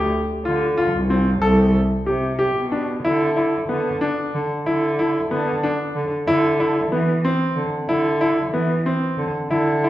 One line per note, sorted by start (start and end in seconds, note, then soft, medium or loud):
0.00 0.18 G4 medium
0.45 0.85 D3 medium
0.45 0.64 F4 medium
0.77 0.96 F4 medium
0.93 1.33 C2 medium
1.10 1.28 C4 medium
1.42 1.68 C2 loud
1.42 1.78 A4 medium
2.06 2.47 C3 medium
2.06 2.25 G4 medium
2.39 2.57 G4 medium
2.55 2.96 B2 medium
2.72 2.90 D4 medium
3.04 3.58 D3 medium
3.04 3.23 E4 medium
3.36 3.55 E4 medium
3.69 3.96 D3 medium
3.69 3.87 B3 medium
4.01 4.38 D4 medium
4.34 4.48 D3 medium
4.66 5.20 D3 medium
4.66 4.85 E4 medium
4.99 5.17 E4 medium
5.31 5.58 D3 medium
5.31 5.49 B3 medium
5.63 6.00 D4 medium
5.95 6.09 D3 medium
6.27 6.81 D3 loud
6.27 6.46 E4 medium
6.60 6.78 E4 medium
6.92 7.19 E3 medium
6.92 7.10 B3 medium
7.25 7.61 C4 medium
7.56 7.70 D3 medium
7.89 8.42 D3 loud
7.89 8.07 E4 medium
8.21 8.39 E4 medium
8.53 8.80 E3 medium
8.53 8.72 B3 medium
8.86 9.23 C4 medium
9.18 9.31 D3 medium
9.50 9.89 D3 loud
9.50 9.69 E4 medium
9.84 9.89 E4 medium